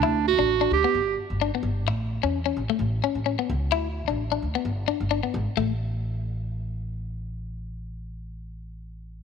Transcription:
X:1
M:4/4
L:1/16
Q:"Swing 16ths" 1/4=130
K:Glyd
V:1 name="Clarinet"
D2 F4 G4 z6 | z16 | z16 | z16 |
z16 |]
V:2 name="Clean electric guitar"
E2 z D2 D2 B,2 z3 D B,2 z | z3 C2 C2 A,2 z C2 C B,2 z | E2 z D2 D2 B,2 z D2 D B,2 z | A,2 z12 z2 |
z16 |]
V:3 name="Upright bass" clef=bass
D,,3 A,,,3 D,, z G,,,2 z G,,,2 z G,,,2 | A,,,3 E,,3 A,,, z A,,,2 z A,,,2 z C,,2 | D,,3 A,,,3 D,, z G,,,2 z G,,,2 z ^G,,, z | A,,,16- |
A,,,16 |]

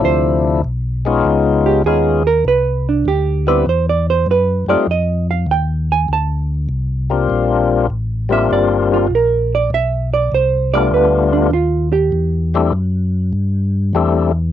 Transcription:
X:1
M:4/4
L:1/8
Q:"Swing" 1/4=99
K:Clyd
V:1 name="Hollow-body jazz guitar"
c2 z3 G ^G _B | B D G B (3c d c B d | _e =f g _a =a4 | z3 e d =F _B d |
e d c d B D =F G- | G4 z4 |]
V:2 name="Tonewheel organ"
[C,=F,A,DE]2 z [_A,B,^C_E=F]3 [^G,B,C^D^E] z | z3 [G,B,CDE] z3 [G,A,C_E=F] | z6 z [G,_B,CD=F]- | [G,_B,CD=F]2 z [G,B,CDF]3 z2 |
z3 [G,A,B,D=F]3 z2 | z [G,A,CDE] z4 [G,A,CDE] z |]
V:3 name="Tonewheel organ" clef=bass
D,,2 B,,,2 ^C,,2 ^D,,2 | C,,2 D,,2 E,,2 F,, F,, | =F,,2 _E,,2 D,,2 C,,2 | _B,,,2 A,,,2 G,,,2 B,,,2 |
B,,,2 C,,2 D,,2 _E,,2 | E,,2 F,,2 G,,2 E,,2 |]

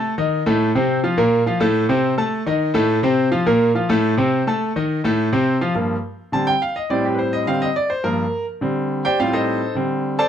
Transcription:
X:1
M:4/4
L:1/8
Q:1/4=210
K:Fmix
V:1 name="Grand piano"
[A,Aa] [E,Ee]2 [A,,A,A]2 [C,Cc]2 [F,Ff] | [B,,B,B]2 [F,Ff] [A,,A,A]2 [C,Cc]2 [A,Aa]- | [A,Aa] [E,Ee]2 [A,,A,A]2 [C,Cc]2 [F,Ff] | [B,,B,B]2 [F,Ff] [A,,A,A]2 [C,Cc]2 [A,Aa]- |
[A,Aa] [E,Ee]2 [A,,A,A]2 [C,Cc]2 [F,Ff] | z4 a g f e | d G [=Bc] e f e d c | B3 z4 [Gcdg] |
[Ff] [EAce]3 z3 [Acda] |]
V:2 name="Grand piano" clef=bass
z8 | z8 | z8 | z8 |
z8 | [G,,F,B,] z3 [D,G,C] z3 | [A,,G,C]4 [D,G,C] z3 | [G,,F,B,] z3 [D,G,C]3 z |
[A,,G,C]3 z [D,G,C]3 z |]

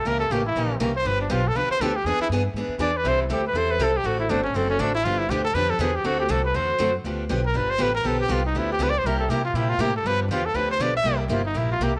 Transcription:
X:1
M:4/4
L:1/8
Q:"Swing" 1/4=240
K:Gmix
V:1 name="Trumpet"
^A =A G E3 z c | B D F A B c A G | ^G E z4 d B | c E G B c B A G |
^F E D ^C =C ^C D E | F E G A B A _A G | ^F G A B c3 z | z3 _B =B c B _B |
A G F _E =E G (3B d c | _B A G F E F G A | B D F A B c d e- | e z F _E =E F G A |]
V:2 name="Steel-string acoustic guitar"
[^C,E,^A,^CG] z [C,E,A,CG] z [C,E,A,CG] z [C,E,A,CG] z | [D,F,B,DG] z [D,F,B,DG] z [D,F,B,DG] z [D,F,B,DG] z | [E,B,D^G] z [E,B,DG] z [E,B,DG] z [E,B,DG] z | [E,G,CEA] z [E,G,CEA] z [E,G,CEA] z [E,G,CEA] z |
[D,A,C^FA] z [D,A,CFA] z [D,A,CFA] z [D,A,CFA] z | [D,F,B,DG] z [D,F,B,DG] z [D,F,B,DG] z [D,F,B,DG] z | [D,A,C^FA] z [D,A,CFA] z [D,A,CFA] z [D,A,CFA] z | [D,F,B,DG] z [D,F,B,DG] z [D,F,B,DG] z [D,F,B,DG] z |
[D,F,B,DG] z [D,F,B,DG] z [D,F,B,DG] z [D,F,B,DG] z | [C,G,_B,EG] z [C,G,B,EG] z [C,G,B,EG] z [C,G,B,EG] z | [D,F,B,DG] z [D,F,B,DG] z [D,F,B,DG] z [D,F,B,DG] z | [C,G,_B,EG] z [C,G,B,EG] z [C,G,B,EG] z [C,G,B,EG] z |]
V:3 name="Upright bass" clef=bass
^C,,2 A,,,2 ^A,,,2 =C,,2 | G,,,2 B,,,2 C,, z D,,2 | E,, z G,,2 ^G,, z E,,2 | C,,2 D,,2 E,,2 C,,2 |
A,,,2 G,,,2 ^F,,,2 A,,,2 | G,,,2 D,,2 F,,2 E,,2 | D,,2 C,,2 E,,2 ^F,,2 | D,,2 B,,,2 G,,,2 A,,,2 |
B,,,2 C,,2 D,,2 ^C,,2 | C,,2 C,2 _B,,2 A,,2 | G,,2 E,,2 D,,2 B,,,2 | C,,2 G,,,2 _B,,,2 C,,2 |]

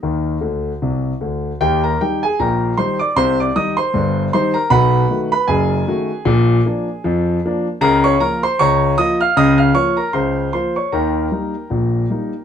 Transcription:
X:1
M:2/4
L:1/16
Q:"Swing 16ths" 1/4=77
K:Eb
V:1 name="Grand piano"
[ee']4 z4 | [Gg] [Bb] [Gg] [Aa] [Bgb]2 [cc'] [dd'] | [cc'] [dd'] [ee'] [cc']3 [cc'] [Bb] | [=B^f=b]3 [Bb] [Aa]4- |
[Aa]6 z2 | [K:Bbdor] [Bb] [dd'] [Bb] [cc'] [dbd']2 [ee'] [ff'] | [ee'] [ff'] [dd'] [Bb] [cc']2 [cc'] [dd'] | [Bgb]8 |]
V:2 name="Grand piano" clef=bass
[E,,E,]2 [D,,D,]2 [C,,C,]2 [D,,D,]2 | [E,,E,]2 [E,G,E]2 [B,,,B,,]2 [E,G,E]2 | [C,,C,]2 [E,G,E]2 [G,,,G,,]2 [E,G,E]2 | [=B,,,=B,,]2 [^D,=A,^F]2 [^F,,,^F,,]2 [D,A,F]2 |
[B,,,B,,]2 [F,B,D]2 [F,,F,]2 [F,B,D]2 | [K:Bbdor] [D,,D,]2 [F,B,F]2 [D,,D,]2 [F,B,F]2 | [D,,D,]2 [F,B,F]2 [D,,D,]2 [F,B,F]2 | [E,,E,]2 [G,B,E]2 [B,,,B,,]2 [G,B,E]2 |]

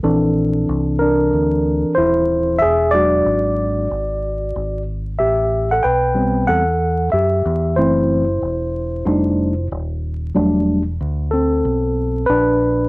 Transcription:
X:1
M:4/4
L:1/16
Q:"Swing 16ths" 1/4=93
K:Em
V:1 name="Tine electric piano"
z6 [D_B]6 [Ec]4 | [^Ge]2 [Fd]12 z2 | [Ge]3 [Af] [Bg]4 [Af]4 [Ge]4 | [Ec]12 z4 |
z6 [CA]6 [DB]4 |]
V:2 name="Tine electric piano"
[E,CDA]16 | z2 [F,^G,D]6 z8 | z6 [G,B,C]2 z8 | [E,A,C]2 z6 [G,A,D_E]2 z6 |
[F,G,A,D]2 z12 z2 |]
V:3 name="Fingered electric bass" clef=bass
_B,,,4 C,,4 D,,3 z ^D,,,4 | E,,,4 ^G,,,4 G,,,4 G,,,4 | A,,,4 B,,,4 E,,4 F,,2 E,,2 | F,,,4 E,,,4 =F,,,4 _E,,,4 |
E,,,4 D,,4 B,,,4 _B,,,4 |]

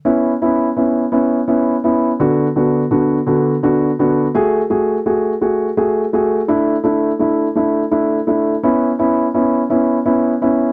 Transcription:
X:1
M:6/8
L:1/8
Q:3/8=56
K:C#phr
V:1 name="Upright piano"
[B,CE] [B,CE] [B,CE] [B,CE] [B,CE] [B,CE] | [D,B,DF] [D,B,DF] [D,B,DF] [D,B,DF] [D,B,DF] [D,B,DF] | [A,FG] [A,FG] [A,FG] [A,FG] [A,FG] [A,FG] | [A,DE] [A,DE] [A,DE] [A,DE] [A,DE] [A,DE] |
[B,CE] [B,CE] [B,CE] [B,CE] [B,CE] [B,CE] |]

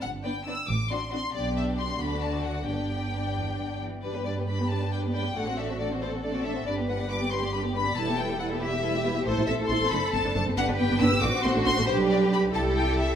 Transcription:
X:1
M:6/8
L:1/16
Q:3/8=92
K:G
V:1 name="Violin section"
f2 g2 e'2 d'2 c'2 c'2 | d2 e2 c'2 b2 a2 f2 | g8- g2 z2 | B2 d2 b2 a2 g2 g2 |
f2 e2 d2 c2 d2 e2 | d2 f2 d'2 c'2 b2 b2 | a2 g2 f2 e6 | c2 e2 c'2 b2 a2 a2 |
f2 g2 e'2 d'2 c'2 c'2 | c2 d2 b2 a2 g2 e2 |]
V:2 name="Violin section"
z2 [Bd]2 [Bd]2 z2 [Fd]2 [Fd]2 | [Gd]6 [Fd]6 | [Gd]8- [Gd]2 z2 | [Bd] [GB] [Bd] [GB] [Bd] [GB] [Bd] [GB] [Bd] [GB] [Bd] [GB] |
[Ad] [Fc] [Ad] [Fc] [Ad] [Fc] [Ad] [Fc] [Ad] [Fc] [Ad] [Fc] | B [Gd] B [Gd] B [Gd] B [Gd] B [Gd] B [Gd] | [EB] [Ge] [EB] [Ge] [EB] [Ge] [EB] [Ge] [EB] [Ge] [EB] [Ge] | [Ac]12 |
[GB]6 [Fc]6 | [GB]6 [GA]6 |]
V:3 name="Cello section"
G,,6 A,,6 | B,,6 D,6 | G,,6 E,,2 G,,2 E,2 | z6 D6 |
F6 A6 | B6 G6 | A6 G2 A2 G2 | A12 |
B6 F6 | G6 A6 |]
V:4 name="Viola section"
z2 [B,D]2 [B,D]2 z2 [CD]2 [CD]2 | [B,D]6 [A,D]6 | [B,D]8- [B,D]2 z2 | [G,D] B, [G,D] B, [G,D] B, [G,D] B, [G,D] B, [G,D] B, |
[A,D] C [A,D] C [A,D] C [A,D] C [A,D] C [A,D] C | [G,D] B, [G,D] B, [G,D] B, [G,D] B, [G,D] B, [G,D] B, | [G,E] [B,G] [G,E] [B,G] [G,E] [B,G] [G,E] [B,G] [G,E] [B,G] [G,E] [B,G] | [A,E] [A,E] [A,C] [A,E] [A,E] [A,C] [A,D] z [A,C] [A,D] [A,D] [A,C] |
[B,D] [B,D] B, [B,D] [B,D] B, [A,D] z [A,C] [A,D] [A,D] [A,C] | [G,D]6 [G,E]6 |]
V:5 name="Double bass section" clef=bass
G,,,4- G,,, z A,,,4- A,,, z | B,,,6 D,,6 | G,,,8- G,,,2 z2 | G,,12 |
A,,,12 | G,,,12 | E,,,12 | A,,, A,,, A,,, A,,, A,,, A,,, F,,, z F,,, F,,, F,,, F,,, |
G,,, G,,, G,,, G,,, G,,, G,,, A,,, z A,,, A,,, A,,, A,,, | B,,,6 C,,6 |]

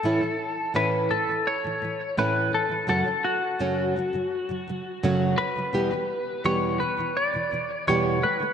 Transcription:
X:1
M:4/4
L:1/16
Q:1/4=84
K:Amix
V:1 name="Electric slide guitar"
A4 B2 A2 c4 B2 A2 | A2 F12 B2- | B4 c2 B2 d4 c2 B2 |]
V:2 name="Nylon-string guitar" clef=bass
[A,,E,A,CE] [A,,E,]2 z [A,,E,A,CE]2 [A,,E,] [A,,E,]2 [A,,E,] [A,,E,]2 [A,,E,A,CE]2 [A,,E,] [A,,E,] | [F,,C,F,A,CF] [F,,C,F,]2 z [F,,C,F,A,CF]2 [F,,C,F,] [F,,C,F,]2 [F,,C,F,] [F,,C,F,]2 [F,,C,F,A,CF]2 F,, [F,,C,F,] | [E,,B,,E,G,B,G] [E,,B,,E,]2 z [E,,B,,E,G,B,G]2 [E,,B,,E,] [E,,B,,E,]2 [E,,B,,E,] [E,,B,,E,]2 [E,,B,,E,G,B,G]2 [D,A,] [D,A,] |]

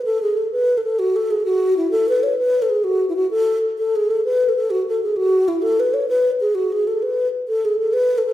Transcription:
X:1
M:6/8
L:1/16
Q:3/8=130
K:A
V:1 name="Alto flute"
A2 G2 A2 B3 A A2 | F2 A2 G2 F4 E2 | A2 B2 c2 B3 A G2 | F3 E F2 A4 z2 |
A2 G2 A2 B3 A A2 | F2 A2 G2 F4 E2 | A2 B2 c2 B3 z G2 | F2 G2 A2 B6 |
A2 G2 A2 B3 A A2 |]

